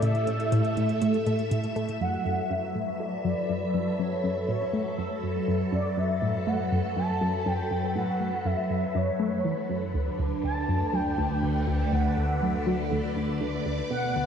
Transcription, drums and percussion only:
0.02 closed hi-hat, high tom
0.15 closed hi-hat
0.27 closed hi-hat, high tom
0.40 closed hi-hat
0.52 closed hi-hat, high tom
0.65 closed hi-hat
0.77 closed hi-hat, high tom
0.89 closed hi-hat
1.02 closed hi-hat, high tom
1.14 closed hi-hat
1.26 closed hi-hat, high tom
1.39 closed hi-hat
1.51 closed hi-hat, high tom
1.64 closed hi-hat
1.76 closed hi-hat, high tom
1.89 closed hi-hat

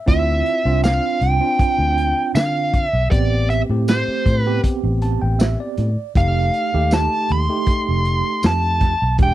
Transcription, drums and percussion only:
0.08 kick, closed hi-hat
0.46 closed hi-hat
0.84 snare, closed hi-hat, tambourine
1.21 closed hi-hat
1.59 kick, closed hi-hat
1.98 closed hi-hat
2.35 snare, closed hi-hat, tambourine
2.74 kick, closed hi-hat
3.12 kick, closed hi-hat
3.50 closed hi-hat
3.88 snare, closed hi-hat, tambourine
4.26 kick, closed hi-hat
4.64 kick, closed hi-hat
5.02 closed hi-hat
5.40 snare, closed hi-hat, tambourine
5.78 closed hi-hat
6.15 kick, closed hi-hat
6.54 closed hi-hat
6.91 snare, closed hi-hat, tambourine
7.29 closed hi-hat
7.66 kick, closed hi-hat
8.05 closed hi-hat
8.43 snare, closed hi-hat, tambourine
8.81 kick, snare, closed hi-hat
9.18 kick, closed hi-hat

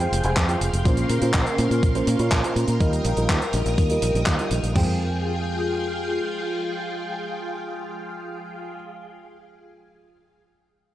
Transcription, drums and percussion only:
0.00 closed hi-hat
0.13 closed hi-hat
0.24 closed hi-hat
0.36 kick, clap, closed hi-hat
0.49 closed hi-hat
0.61 closed hi-hat
0.74 closed hi-hat
0.85 kick, closed hi-hat
0.97 closed hi-hat
1.10 closed hi-hat
1.22 closed hi-hat
1.34 kick, clap, closed hi-hat
1.47 closed hi-hat
1.58 closed hi-hat
1.71 closed hi-hat
1.83 kick, closed hi-hat
1.95 closed hi-hat
2.07 closed hi-hat
2.19 closed hi-hat
2.32 kick, clap, closed hi-hat
2.44 closed hi-hat
2.56 closed hi-hat
2.68 closed hi-hat
2.81 kick, closed hi-hat
2.93 closed hi-hat
3.05 closed hi-hat
3.17 closed hi-hat
3.29 kick, clap, closed hi-hat
3.42 closed hi-hat
3.53 closed hi-hat
3.66 closed hi-hat
3.78 kick, closed hi-hat
3.90 closed hi-hat
4.02 closed hi-hat
4.15 closed hi-hat
4.26 kick, clap, closed hi-hat
4.39 closed hi-hat
4.51 closed hi-hat
4.64 closed hi-hat
4.76 kick, floor tom, crash

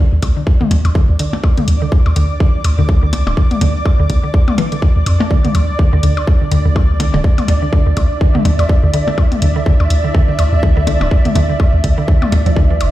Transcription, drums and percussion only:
0.23 kick, closed hi-hat, percussion blips
0.47 kick
0.61 high tom
0.71 closed hi-hat, percussion blips
0.85 closed hi-hat, percussion blips
0.95 kick
1.19 closed hi-hat
1.33 percussion blips
1.44 kick, percussion blips
1.57 closed hi-hat, high tom
1.68 closed hi-hat
1.92 kick
2.06 percussion blips
2.16 closed hi-hat
2.40 kick
2.64 closed hi-hat, percussion blips
2.89 kick
3.13 closed hi-hat, percussion blips
3.27 percussion blips
3.37 kick
3.51 closed hi-hat, high tom
3.61 closed hi-hat, percussion blips
3.85 kick, percussion blips
4.10 kick, closed hi-hat
4.34 kick
4.48 high tom, percussion blips
4.58 closed hi-hat, percussion blips
4.72 closed hi-hat
4.82 kick
5.06 closed hi-hat, percussion blips
5.20 percussion blips
5.31 kick
5.45 closed hi-hat, high tom
5.55 closed hi-hat, percussion blips
5.79 kick
6.03 closed hi-hat
6.17 percussion blips
6.27 kick
6.52 closed hi-hat
6.76 kick, percussion blips
7.00 closed hi-hat, percussion blips
7.14 percussion blips
7.24 kick
7.38 closed hi-hat, high tom, percussion blips
7.48 closed hi-hat, percussion blips
7.73 kick
7.97 kick, closed hi-hat, percussion blips
8.21 kick
8.35 high tom
8.45 closed hi-hat, percussion blips
8.59 closed hi-hat, percussion blips
8.69 kick
8.94 closed hi-hat
9.08 percussion blips
9.18 kick, percussion blips
9.32 closed hi-hat, high tom
9.42 closed hi-hat
9.66 kick
9.80 percussion blips
9.90 closed hi-hat
10.15 kick
10.39 closed hi-hat, percussion blips
10.63 kick
10.87 closed hi-hat, percussion blips
11.01 percussion blips
11.11 kick
11.25 closed hi-hat, high tom
11.35 closed hi-hat, percussion blips
11.60 kick, percussion blips
11.84 kick, closed hi-hat
12.08 kick
12.22 high tom, percussion blips
12.32 closed hi-hat, percussion blips
12.46 closed hi-hat
12.56 kick
12.81 closed hi-hat, percussion blips

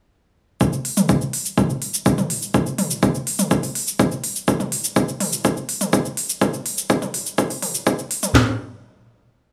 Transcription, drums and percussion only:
0.61 kick, shaker
0.73 shaker
0.85 open hi-hat
0.97 mid tom, shaker
1.09 kick, shaker
1.21 shaker
1.33 open hi-hat
1.46 shaker
1.58 kick, mid tom, shaker
1.70 shaker
1.82 open hi-hat
1.94 shaker
2.06 kick, shaker
2.18 mid tom, shaker
2.30 open hi-hat
2.42 shaker
2.54 kick, shaker
2.66 shaker
2.78 mid tom, open hi-hat
2.91 shaker
3.03 kick, shaker
3.15 shaker
3.27 open hi-hat
3.39 mid tom, shaker
3.51 kick, shaker
3.63 open hi-hat, shaker
3.75 open hi-hat
3.87 shaker
3.99 kick, mid tom, shaker
4.12 shaker
4.24 open hi-hat
4.36 shaker
4.48 kick, shaker
4.60 mid tom, shaker
4.72 open hi-hat
4.84 shaker
4.96 kick, shaker
5.08 shaker
5.20 mid tom, open hi-hat
5.33 shaker
5.45 kick, shaker
5.57 shaker
5.69 open hi-hat
5.81 mid tom, shaker
5.93 kick, shaker
6.05 shaker
6.17 open hi-hat
6.29 shaker
6.41 kick, mid tom, shaker
6.54 shaker
6.66 open hi-hat
6.78 shaker
6.90 kick, shaker
7.02 mid tom, shaker
7.14 open hi-hat
7.26 shaker
7.38 kick, shaker
7.50 open hi-hat, shaker
7.62 mid tom, open hi-hat
7.75 shaker
7.87 kick, shaker
7.99 shaker
8.11 open hi-hat
8.23 mid tom, shaker
8.35 snare, clap

